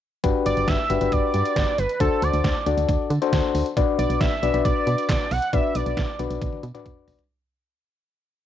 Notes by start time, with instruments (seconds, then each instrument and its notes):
0.24 fm bass G1, synth keys D4 F#4 G4 B4, kick, closed hi-hat
0.46 fm bass G1, analog synth lead D5, closed hi-hat
0.57 fm bass G1, closed hi-hat
0.68 fm bass G1, analog synth lead E5, kick, snare, closed hi-hat
0.90 fm bass G1, synth keys D4 F#4 G4 B4, closed hi-hat
1.01 fm bass G1, synth keys D4 F#4 G4 B4, analog synth lead E5, closed hi-hat
1.12 fm bass G1, analog synth lead D5, kick, closed hi-hat
1.34 fm bass G2, closed hi-hat
1.45 closed hi-hat
1.56 fm bass G1, kick, snare, closed hi-hat
1.78 fm bass G1, analog synth lead B4, closed hi-hat
1.89 closed hi-hat
2.00 fm bass D2, synth keys D4 F#4 A4 C5, analog synth lead A4, kick, closed hi-hat
2.22 fm bass D2, analog synth lead D5, closed hi-hat
2.33 fm bass D2, closed hi-hat
2.44 fm bass D2, kick, snare, closed hi-hat
2.66 fm bass D2, synth keys D4 F#4 A4 D5, closed hi-hat
2.77 fm bass D2, closed hi-hat
2.89 fm bass D2, kick, closed hi-hat
3.10 fm bass D3, closed hi-hat
3.22 synth keys D4 F#4 A4 C5, closed hi-hat
3.33 fm bass D2, kick, snare, closed hi-hat
3.54 fm bass D2, open hi-hat
3.66 closed hi-hat
3.77 fm bass B1, synth keys D4 F#4 B4 D5, kick, closed hi-hat
3.99 fm bass B1, analog synth lead D5, closed hi-hat
4.10 fm bass B1, closed hi-hat
4.21 fm bass B1, analog synth lead E5, kick, snare, closed hi-hat
4.43 fm bass B1, synth keys D4 F#4 B4 D5, closed hi-hat
4.54 fm bass B1, synth keys D4 F#4 B4 D5, closed hi-hat
4.65 fm bass B1, analog synth lead D5, kick, closed hi-hat
4.87 fm bass B2, closed hi-hat
4.98 closed hi-hat
5.09 fm bass B1, kick, snare, clap, closed hi-hat
5.31 fm bass B1, analog synth lead F#5, open hi-hat
5.42 closed hi-hat
5.53 fm bass B1, synth keys D4 F#4 B4 D5, analog synth lead E5, kick, closed hi-hat
5.75 fm bass B1, analog synth lead D5, closed hi-hat
5.86 fm bass B1, closed hi-hat
5.97 fm bass B1, kick, snare, closed hi-hat
6.19 fm bass B1, synth keys D4 F#4 B4 D5, closed hi-hat
6.30 fm bass B1, closed hi-hat
6.42 fm bass B1, kick, closed hi-hat, high tom
6.53 high tom
6.63 fm bass B2, closed hi-hat
6.74 synth keys D4 F#4 B4 D5, closed hi-hat, mid tom
6.86 fm bass B1, kick, closed hi-hat, mid tom
7.08 fm bass B1, floor tom, open hi-hat
7.19 closed hi-hat, floor tom